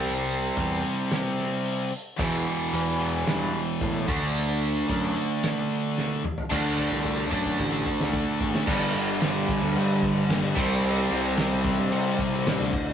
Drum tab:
CC |----------------|----------------|----------------|x---------------|
HH |o-o-o-o-o-o-o-o-|o-o-o-o-o-o-o-o-|o-o-o-o-o-o-----|----------------|
SD |--------o-o-----|--------o-------|--------o---o---|-----------o---o|
T2 |----------------|----------------|--------------o-|----------------|
FT |----------------|----------------|---------------o|----------------|
BD |----o-----------|o-----------o-o-|----o-----------|o-ooo-ooo-o-o-o-|

CC |x-x-x-x-x-x-x-x-|x-x-x-x-x-x-x-x-|
HH |----------------|----------------|
SD |----o-------o---|----oo-----oo---|
T2 |----------------|----------------|
FT |----------------|----------------|
BD |o-----o---o---o-|------o---o---o-|